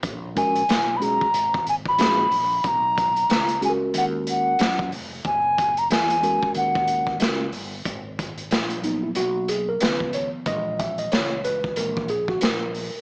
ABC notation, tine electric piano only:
X:1
M:4/4
L:1/16
Q:"Swing 16ths" 1/4=92
K:G#m
V:1 name="Tine electric piano"
z2 [G,CFA]2 z2 [G,CFG]2 z4 [G,CFG]2 z2 | z6 [G,CFGA]6 z4 | z6 [G,CFA]6 [G,CFA]2 z2 | z6 D E F2 G A B2 c2 |
d2 e d c2 B2 A2 G F A4 |]
V:2 name="Tine electric piano" clef=bass
z16 | z16 | z16 | z6 [F,A,B,]6 [D,^E,B,]4 |
[A,,E,G,]8 [E,G,A,]2 z6 |]